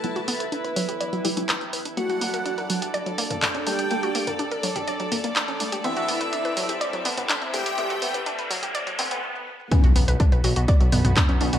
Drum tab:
HH |xxoxxxoxxxoxxxox|xxoxxxoxxxoxxxox|xxoxxxoxxxoxxxox|xxoxxxoxxxoxxxox|
CP |------------x---|------------x---|------------x---|------------x---|
T2 |----------------|-----------oo---|---o---o--o-----|-----------oo---|
BD |----------------|----------------|----------------|----------------|

HH |xxoxxxoxxxox----|xxoxxxoxxxoxxxox|
CP |----------------|------------x---|
T2 |---o---o--o-----|----------ooo---|
BD |----------------|o---o---o---o---|